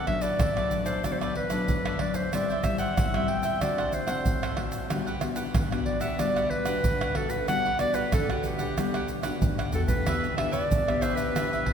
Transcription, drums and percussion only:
0.07 pandeiro medium
0.07 tamborim medium
0.07 surdo medium
0.21 pandeiro medium
0.21 shaker medium
0.39 pandeiro medium
0.39 tamborim medium
0.39 shaker medium
0.39 surdo loud
0.57 pandeiro soft
0.57 tamborim medium
0.57 shaker soft
0.71 pandeiro medium
0.71 shaker medium
0.86 pandeiro medium
0.86 shaker medium
1.04 pandeiro medium
1.04 tamborim medium
1.04 shaker medium
1.04 surdo medium
1.21 pandeiro soft
1.21 tamborim medium
1.21 shaker soft
1.35 pandeiro medium
1.50 pandeiro medium
1.50 tamborim medium
1.50 shaker medium
1.68 pandeiro medium
1.68 shaker medium
1.68 surdo medium
1.86 pandeiro soft
1.86 tamborim medium
1.86 shaker soft
1.99 pandeiro medium
1.99 tamborim medium
2.14 pandeiro medium
2.14 shaker medium
2.33 pandeiro medium
2.33 tamborim medium
2.33 shaker medium
2.33 surdo medium
2.50 pandeiro soft
2.50 shaker soft
2.64 pandeiro medium
2.64 tamborim medium
2.64 shaker medium
2.64 surdo medium
2.78 pandeiro medium
2.78 shaker medium
2.97 pandeiro medium
2.97 tamborim medium
2.97 shaker medium
2.97 surdo loud
3.14 pandeiro soft
3.14 tamborim medium
3.14 shaker soft
3.28 pandeiro medium
3.43 pandeiro medium
3.43 shaker medium
3.61 pandeiro medium
3.61 tamborim medium
3.61 shaker medium
3.61 surdo medium
3.78 pandeiro soft
3.78 tamborim medium
3.78 shaker soft
3.92 pandeiro medium
3.92 shaker medium
4.08 pandeiro medium
4.08 tamborim medium
4.08 shaker medium
4.26 pandeiro medium
4.26 shaker medium
4.26 surdo medium
4.43 pandeiro soft
4.43 tamborim medium
4.43 shaker soft
4.57 pandeiro medium
4.57 tamborim medium
4.72 pandeiro medium
4.72 shaker medium
4.90 pandeiro medium
4.90 tamborim medium
4.90 shaker medium
4.90 surdo medium
5.07 pandeiro soft
5.07 shaker soft
5.21 pandeiro medium
5.21 tamborim medium
5.21 shaker medium
5.36 pandeiro medium
5.36 shaker medium
5.55 pandeiro medium
5.55 tamborim medium
5.55 shaker medium
5.55 surdo loud
5.72 pandeiro soft
5.72 tamborim medium
5.72 shaker soft
5.86 pandeiro medium
6.01 pandeiro medium
6.01 shaker medium
6.19 pandeiro medium
6.19 tamborim medium
6.19 shaker medium
6.19 surdo medium
6.36 pandeiro soft
6.36 tamborim medium
6.36 shaker soft
6.50 pandeiro medium
6.66 pandeiro medium
6.66 tamborim medium
6.66 shaker medium
6.84 pandeiro medium
6.84 shaker medium
6.84 surdo loud
7.01 pandeiro soft
7.01 tamborim medium
7.01 shaker soft
7.15 pandeiro medium
7.15 tamborim medium
7.30 pandeiro medium
7.30 shaker medium
7.48 pandeiro medium
7.48 tamborim medium
7.48 shaker medium
7.48 surdo medium
7.65 pandeiro soft
7.65 shaker soft
7.79 pandeiro medium
7.79 tamborim medium
7.79 shaker medium
7.94 pandeiro medium
7.94 shaker medium
8.12 pandeiro medium
8.12 tamborim medium
8.12 shaker medium
8.12 surdo loud
8.30 pandeiro soft
8.30 tamborim medium
8.30 shaker soft
8.44 pandeiro medium
8.44 shaker medium
8.59 pandeiro medium
8.59 shaker medium
8.78 pandeiro medium
8.78 tamborim medium
8.78 shaker medium
8.78 surdo medium
8.94 pandeiro soft
8.94 tamborim medium
8.94 shaker soft
9.08 pandeiro medium
9.08 shaker medium
9.23 pandeiro medium
9.23 tamborim medium
9.23 shaker medium
9.42 pandeiro medium
9.42 shaker medium
9.42 surdo loud
9.59 pandeiro soft
9.59 tamborim medium
9.59 shaker soft
9.72 surdo medium
9.72 pandeiro medium
9.72 shaker medium
9.88 pandeiro medium
9.88 shaker medium
9.88 surdo loud
10.06 pandeiro medium
10.06 tamborim medium
10.06 shaker medium
10.06 surdo medium
10.24 pandeiro soft
10.24 shaker soft
10.38 pandeiro medium
10.38 tamborim medium
10.53 pandeiro medium
10.53 shaker medium
10.71 pandeiro medium
10.71 shaker medium
10.71 surdo loud
10.88 pandeiro soft
10.88 tamborim medium
10.88 shaker soft
11.02 pandeiro medium
11.02 tamborim medium
11.02 shaker medium
11.17 pandeiro medium
11.17 shaker medium
11.36 pandeiro medium
11.36 tamborim medium
11.36 shaker medium
11.36 surdo medium
11.53 pandeiro soft
11.53 shaker soft
11.66 pandeiro medium
11.66 surdo medium

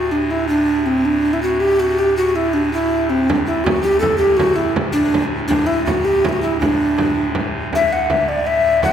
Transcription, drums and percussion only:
3.30 frame drum medium
3.66 frame drum loud
4.03 frame drum medium
4.39 frame drum medium
4.76 frame drum medium
5.14 frame drum medium
5.51 frame drum medium
5.87 frame drum medium
6.24 frame drum medium
6.62 frame drum medium
6.98 frame drum medium
7.16 frame drum soft
7.35 frame drum medium
7.54 frame drum soft
7.73 frame drum medium
7.91 frame drum soft
8.10 frame drum medium
8.65 frame drum soft
8.83 frame drum medium

